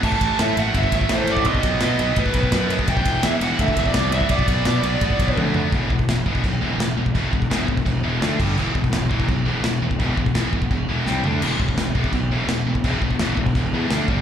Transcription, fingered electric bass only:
X:1
M:4/4
L:1/8
Q:1/4=169
K:Em
V:1 name="Fingered electric bass" clef=bass
A,,, A,,, A,, A,,, G,,, A,,, A,,,2 | B,,, B,,, B,, B,,, A,,, B,,, F,,2 | E,,, E,,, E,, E,,, D,, E,,, C,,2 | B,,, B,,, B,, B,,, A,,, B,,, D,,2 |
E,,, E,,, E,,, E,,, B,,, E,,, E,,, E,,, | E,,, E,,, E,,, E,,, E,,, E,,, D,, G,,, | E,,, E,,, E,,, E,,, B,,, E,,, E,,, E,,, | E,,, E,,, E,,, E,,, E,,, E,,, C,, D,, |
E,,, E,,, E,,, E,,, B,,, E,,, E,,, E,,, | E,,, E,,, E,,, E,,, E,,, E,, D,, G,,, |]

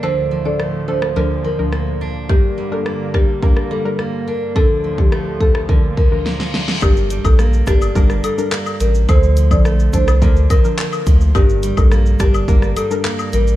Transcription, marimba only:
X:1
M:4/4
L:1/16
Q:1/4=106
K:Gdor
V:1 name="Marimba"
c2 z d z2 c z3 B z4 z | G2 z A z2 G z3 A z3 B z | A2 z G z2 A z3 B z4 z | G2 z A z2 G z3 A z3 B z |
c2 z d z2 c z3 B z4 z | G2 z A z2 G z3 A z3 B z |]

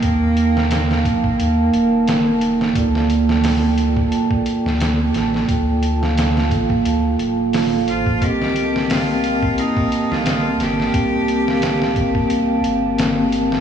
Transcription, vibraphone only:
X:1
M:4/4
L:1/16
Q:"Swing 16ths" 1/4=88
K:Cdor
V:1 name="Vibraphone"
[EBfg]3 [EBfg]12- [EBfg] | [FAd]3 [FAg]12- [FAg] | [FAg]3 [FAf]6- [FAf] [FAf]4 [FAc]2 | [CGBe]3 [CGBg]12- [CGBg] |
[CGBg]3 [CGBf]12- [CGBf] |]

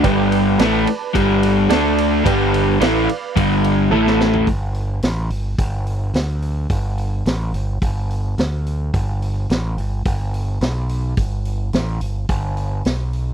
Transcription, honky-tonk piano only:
X:1
M:4/4
L:1/8
Q:1/4=108
K:Gmix
V:1 name="Honky-tonk piano"
[Bdg]2 [Bda]3 z [Ada]2 | [Bdg]2 [Bdf]3 z [Aea]2 | z8 | z8 |
z8 | z8 |]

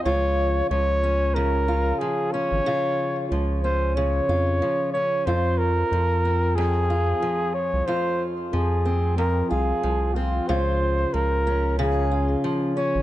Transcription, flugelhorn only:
X:1
M:4/4
L:1/8
Q:"Swing 16ths" 1/4=92
K:Dblyd
V:1 name="Flugelhorn"
d2 d2 B2 A d- | d2 z c d3 d | c B3 A3 d | c z A2 B A2 F |
c2 B2 A2 z d |]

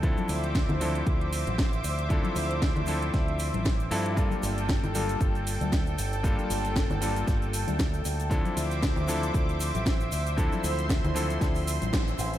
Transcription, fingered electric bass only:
X:1
M:4/4
L:1/16
Q:"Swing 16ths" 1/4=116
K:Dm
V:1 name="Fingered electric bass" clef=bass
D,, z D,,3 D,,3 D,,3 A,,,3 D,,2- | D,, z D,,3 D,,3 D,,3 A,,,3 G,,2- | G,, z G,,,3 G,,,3 G,,,3 D,,3 G,,,2- | G,,, z G,,,3 G,,,3 G,,,3 D,,3 D,,2- |
D,, z D,,3 D,,3 D,,3 A,,,3 D,,2- | D,, z D,,3 D,,3 D,,3 A,,,3 A,,,2 |]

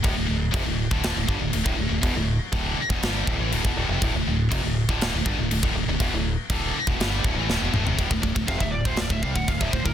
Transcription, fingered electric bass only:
X:1
M:4/4
L:1/16
Q:1/4=121
K:Dm
V:1 name="Fingered electric bass" clef=bass
D,,, D,,, D,,,2 F,,, D,,,2 D,,,2 D,,, G,,, D,,, D,,, D,,, D,,, D,,, | E,,, D,,,2 z D,,,2 z E,,, G,,,2 D,,, A,,, D,,, E,,, D,,, F,,, | D,,, D,,, D,,,2 F,,, D,,,2 D,,,2 D,,, G,,, D,,, D,,, D,,, D,,, D,,, | E,,, D,,,2 z D,,,2 z E,,, G,,,2 D,,, A,,, D,,, E,,, D,,, F,,, |
D,,, D,,, D,,, D,,, F,,, D,,,2 D,,, D,,, D,,, C,, D,,, D,,, D,,, D,,, D,,, |]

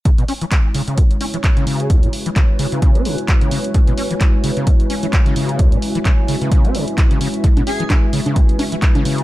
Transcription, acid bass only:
X:1
M:4/4
L:1/16
Q:"Swing 16ths" 1/4=130
K:C#m
V:1 name="Acid bass" clef=bass
C, B,, C E, z2 C, C, C,, z C E, z C, C,2 | C,, C, z E, C, z C, C, C, C C, z2 C, C, z | C, B,, C E, z2 C, C, C,, z C E, z C, C,2 | C,, C, z E, C, z C, C, C, C C, z2 C, C, z |
C, B,, C E, z2 C, C, C,, z C E, z C, C,2 |]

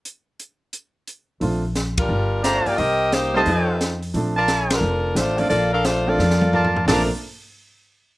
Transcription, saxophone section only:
X:1
M:4/4
L:1/8
Q:"Swing" 1/4=176
K:Bb
V:1 name="Saxophone section"
z8 | z3 [G,DFB]3 [A,DFc] [B,FGd] | [CGBe]2 [B,EGc] [B,EGc] [F,CEA]3 z | z3 [F,DAB]3 [A,DFc] [B,FAd] |
[B,FAd] [DABf] [A,DFc] [B,FAd]4 z | [F,A,DB] z6 z |]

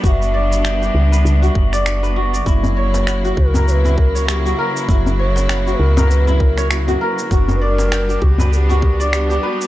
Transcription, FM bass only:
X:1
M:4/4
L:1/8
Q:"Swing 16ths" 1/4=99
K:none
V:1 name="FM bass" clef=bass
^F,,,3 ^C,, C,, F,,,3 | ^F,,,3 ^C,,4 z | ^F,,,3 ^C,,4 z | ^F,,,3 ^C,,4 z |]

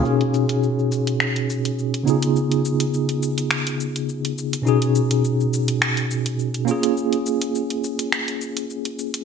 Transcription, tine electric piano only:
X:1
M:4/4
L:1/8
Q:"Swing 16ths" 1/4=104
K:Blyd
V:1 name="Tine electric piano"
[B,,CDFG]6- [B,,CDFG] [C,B,DEG]- | [C,B,DEG]8 | [B,,CDFG]6- [B,,CDFG] [A,CEG]- | [A,CEG]8 |]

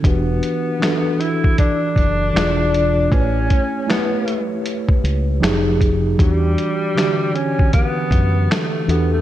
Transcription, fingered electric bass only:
X:1
M:4/4
L:1/8
Q:"Swing 16ths" 1/4=78
K:Edor
V:1 name="Fingered electric bass" clef=bass
E,,, z4 F,,, E,,,2 | A,,, z4 C,, =F,,,2 | E,, z4 F,, z E,, |]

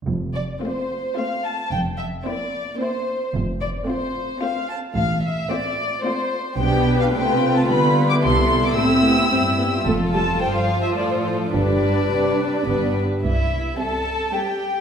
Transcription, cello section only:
X:1
M:3/4
L:1/8
Q:1/4=110
K:F
V:1 name="Cello section" clef=bass
F,,2 z4 | F,,2 z4 | F,,2 z4 | A,,2 z4 |
[K:C] B,,2 C,2 D,2 | C,2 A,,2 G,,2 | F,,2 G,,2 A,,2 | G,,2 C,2 G,,2 |
C,,2 z4 |]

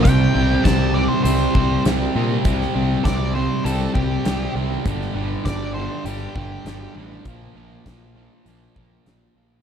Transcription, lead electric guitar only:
X:1
M:4/4
L:1/16
Q:1/4=100
K:Cmix
V:1 name="Lead electric guitar"
g4 a2 d c c4 z4 | z4 d2 c2 A2 G4 z2 | z4 d2 c2 G2 G4 z2 | z16 |]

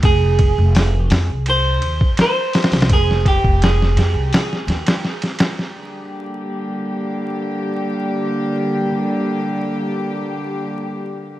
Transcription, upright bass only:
X:1
M:4/4
L:1/16
Q:1/4=84
K:Gphr
V:1 name="Upright bass" clef=bass
F,,,3 F,,,3 F,, C,,3 E,, z4 C,, | F,,,3 F,,,3 F,, C,, z2 E,, z4 z | z16 | z16 |]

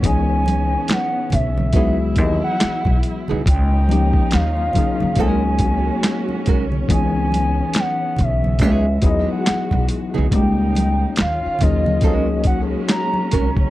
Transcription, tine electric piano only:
X:1
M:4/4
L:1/8
Q:"Swing 16ths" 1/4=70
K:C#dor
V:1 name="Tine electric piano"
[E,B,CDG] z3 [F,B,EFG] z3 | z [^E,A,CD=G] z [F,A,CD^G] [F,A,CDG] z3 | [E,B,CDG] z4 [F,B,DEG] z2 | [=G,A,CD=G] z2 [F,A,CD^G] [F,A,CDG] z3 |]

